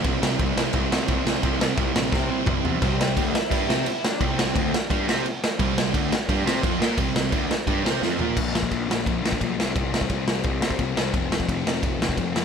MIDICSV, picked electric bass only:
0, 0, Header, 1, 3, 480
1, 0, Start_track
1, 0, Tempo, 346620
1, 65, Time_signature, 4, 2, 24, 8
1, 17239, End_track
2, 0, Start_track
2, 0, Title_t, "Picked electric bass"
2, 0, Program_c, 0, 34
2, 60, Note_on_c, 0, 36, 86
2, 233, Note_off_c, 0, 36, 0
2, 302, Note_on_c, 0, 36, 101
2, 474, Note_off_c, 0, 36, 0
2, 543, Note_on_c, 0, 36, 113
2, 714, Note_off_c, 0, 36, 0
2, 788, Note_on_c, 0, 36, 95
2, 958, Note_off_c, 0, 36, 0
2, 1022, Note_on_c, 0, 36, 100
2, 1194, Note_off_c, 0, 36, 0
2, 1264, Note_on_c, 0, 36, 94
2, 1436, Note_off_c, 0, 36, 0
2, 1503, Note_on_c, 0, 36, 109
2, 1675, Note_off_c, 0, 36, 0
2, 1749, Note_on_c, 0, 36, 100
2, 1919, Note_off_c, 0, 36, 0
2, 1985, Note_on_c, 0, 36, 97
2, 2157, Note_off_c, 0, 36, 0
2, 2224, Note_on_c, 0, 36, 93
2, 2396, Note_off_c, 0, 36, 0
2, 2460, Note_on_c, 0, 36, 91
2, 2633, Note_off_c, 0, 36, 0
2, 2711, Note_on_c, 0, 34, 90
2, 2881, Note_off_c, 0, 34, 0
2, 2940, Note_on_c, 0, 48, 92
2, 3284, Note_off_c, 0, 48, 0
2, 3423, Note_on_c, 0, 36, 98
2, 3596, Note_off_c, 0, 36, 0
2, 3666, Note_on_c, 0, 40, 106
2, 3838, Note_off_c, 0, 40, 0
2, 3907, Note_on_c, 0, 36, 83
2, 4355, Note_off_c, 0, 36, 0
2, 4386, Note_on_c, 0, 38, 101
2, 4611, Note_off_c, 0, 38, 0
2, 4863, Note_on_c, 0, 43, 94
2, 5090, Note_off_c, 0, 43, 0
2, 5103, Note_on_c, 0, 48, 103
2, 5330, Note_off_c, 0, 48, 0
2, 5824, Note_on_c, 0, 36, 87
2, 6274, Note_off_c, 0, 36, 0
2, 6306, Note_on_c, 0, 38, 98
2, 6532, Note_off_c, 0, 38, 0
2, 6791, Note_on_c, 0, 43, 102
2, 7015, Note_off_c, 0, 43, 0
2, 7049, Note_on_c, 0, 48, 104
2, 7265, Note_off_c, 0, 48, 0
2, 7749, Note_on_c, 0, 36, 100
2, 8197, Note_off_c, 0, 36, 0
2, 8227, Note_on_c, 0, 38, 96
2, 8453, Note_off_c, 0, 38, 0
2, 8705, Note_on_c, 0, 43, 98
2, 8932, Note_off_c, 0, 43, 0
2, 8941, Note_on_c, 0, 48, 101
2, 9169, Note_off_c, 0, 48, 0
2, 9185, Note_on_c, 0, 41, 105
2, 9405, Note_off_c, 0, 41, 0
2, 9414, Note_on_c, 0, 46, 105
2, 9646, Note_off_c, 0, 46, 0
2, 9656, Note_on_c, 0, 36, 89
2, 10110, Note_off_c, 0, 36, 0
2, 10138, Note_on_c, 0, 38, 104
2, 10368, Note_off_c, 0, 38, 0
2, 10622, Note_on_c, 0, 43, 92
2, 10849, Note_off_c, 0, 43, 0
2, 10877, Note_on_c, 0, 48, 93
2, 11094, Note_off_c, 0, 48, 0
2, 11102, Note_on_c, 0, 41, 96
2, 11330, Note_off_c, 0, 41, 0
2, 11349, Note_on_c, 0, 46, 90
2, 11573, Note_off_c, 0, 46, 0
2, 11586, Note_on_c, 0, 34, 78
2, 11795, Note_off_c, 0, 34, 0
2, 11825, Note_on_c, 0, 34, 87
2, 12034, Note_off_c, 0, 34, 0
2, 12062, Note_on_c, 0, 34, 93
2, 12273, Note_off_c, 0, 34, 0
2, 12304, Note_on_c, 0, 34, 83
2, 12513, Note_off_c, 0, 34, 0
2, 12548, Note_on_c, 0, 34, 88
2, 12756, Note_off_c, 0, 34, 0
2, 12781, Note_on_c, 0, 34, 90
2, 12992, Note_off_c, 0, 34, 0
2, 13033, Note_on_c, 0, 35, 84
2, 13239, Note_off_c, 0, 35, 0
2, 13263, Note_on_c, 0, 36, 84
2, 13473, Note_off_c, 0, 36, 0
2, 13512, Note_on_c, 0, 36, 79
2, 13925, Note_off_c, 0, 36, 0
2, 13983, Note_on_c, 0, 36, 94
2, 14193, Note_off_c, 0, 36, 0
2, 14228, Note_on_c, 0, 36, 82
2, 14436, Note_off_c, 0, 36, 0
2, 14466, Note_on_c, 0, 36, 85
2, 14674, Note_off_c, 0, 36, 0
2, 14690, Note_on_c, 0, 48, 93
2, 14905, Note_off_c, 0, 48, 0
2, 14940, Note_on_c, 0, 36, 99
2, 15150, Note_off_c, 0, 36, 0
2, 15175, Note_on_c, 0, 36, 98
2, 15387, Note_off_c, 0, 36, 0
2, 15419, Note_on_c, 0, 29, 85
2, 15629, Note_off_c, 0, 29, 0
2, 15658, Note_on_c, 0, 29, 91
2, 15869, Note_off_c, 0, 29, 0
2, 15903, Note_on_c, 0, 29, 105
2, 16111, Note_off_c, 0, 29, 0
2, 16138, Note_on_c, 0, 29, 87
2, 16348, Note_off_c, 0, 29, 0
2, 16377, Note_on_c, 0, 29, 86
2, 16587, Note_off_c, 0, 29, 0
2, 16628, Note_on_c, 0, 29, 86
2, 16833, Note_off_c, 0, 29, 0
2, 16863, Note_on_c, 0, 29, 94
2, 17239, Note_off_c, 0, 29, 0
2, 17239, End_track
3, 0, Start_track
3, 0, Title_t, "Muted picked electric bass strokes"
3, 4631, Note_on_c, 9, 29, 39
3, 4769, Note_off_c, 9, 29, 0
3, 6553, Note_on_c, 9, 29, 43
3, 6692, Note_off_c, 9, 29, 0
3, 8481, Note_on_c, 9, 29, 44
3, 8620, Note_off_c, 9, 29, 0
3, 10390, Note_on_c, 9, 29, 40
3, 10529, Note_off_c, 9, 29, 0
3, 17239, End_track
0, 0, End_of_file